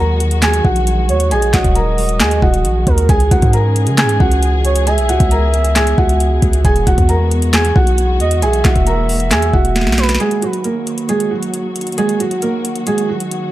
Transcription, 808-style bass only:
0.00 0.61 D#2 loud
0.65 1.11 A#1 loud
1.09 1.33 D#2 loud
1.31 1.52 A#1 loud
1.54 1.64 A#1 loud
1.65 2.22 D#1 loud
2.20 2.41 D#2 loud
2.42 2.66 D#1 loud
2.65 2.86 A#1 loud
2.87 3.08 D#2 loud
3.09 3.30 C#2 loud
3.31 3.42 C#2 loud
3.42 3.88 G#2 loud
3.87 4.05 C#3 loud
4.04 4.19 G#2 loud
4.20 4.99 C#2 loud
4.98 5.11 B1 loud
5.09 5.20 C#2 loud
5.20 5.95 C#2 loud
5.98 6.41 C#2 loud
6.42 6.64 C#2 loud
6.65 6.86 E1 loud
6.87 6.98 E1 loud
6.98 7.73 E2 loud
7.76 8.22 B1 loud
8.20 8.44 E2 loud
8.42 8.63 B1 loud
8.65 8.75 B1 loud
8.76 9.33 E1 loud
9.31 9.52 E2 loud
9.54 9.88 E1 loud
9.87 10.18 B1 loud

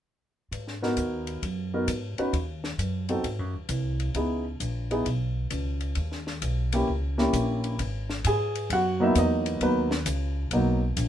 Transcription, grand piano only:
0.82 1.40 B3 medium
0.82 1.40 D#4 medium
0.82 1.40 F#4 soft
0.82 1.40 A#4 medium
1.74 1.87 B3 medium
1.74 1.87 D#4 soft
1.74 1.87 F#4 soft
1.74 1.87 A#4 medium
2.18 2.32 C#4 medium
2.18 2.32 D#4 soft
2.18 2.32 F#4 soft
2.18 2.32 B4 medium
3.09 3.23 C4 soft
3.09 3.23 D#4 soft
3.09 3.23 F#4 soft
3.09 3.23 A4 medium
4.15 4.43 B3 soft
4.15 4.43 D#4 soft
4.15 4.43 E4 soft
4.15 4.43 G#4 soft
4.91 5.05 B3 medium
4.91 5.05 D#4 soft
4.91 5.05 E4 soft
4.91 5.05 G#4 medium
6.73 6.87 A#3 medium
6.73 6.87 C#4 soft
6.73 6.87 E4 soft
6.73 6.87 G4 medium
7.18 7.76 A#3 medium
7.18 7.76 C#4 medium
7.18 7.76 E4 medium
7.18 7.76 G4 medium
8.27 8.69 G#4 medium
8.27 8.68 G#5 medium
8.73 9.00 F#4 medium
8.73 9.03 F#5 medium
9.00 9.58 F#3 medium
9.00 9.58 A#3 medium
9.00 9.58 B3 medium
9.00 9.19 D#4 medium
9.00 9.16 E5 medium
9.04 9.17 E4 medium
9.18 9.61 D#4 medium
9.18 9.59 D#5 medium
9.61 9.88 F#3 soft
9.61 9.89 A#3 soft
9.61 9.89 B3 soft
9.61 9.89 D#4 medium
9.61 10.04 B4 medium
10.53 10.80 F#3 medium
10.53 10.80 A#3 medium
10.53 10.80 B3 soft
10.53 10.80 D#4 medium

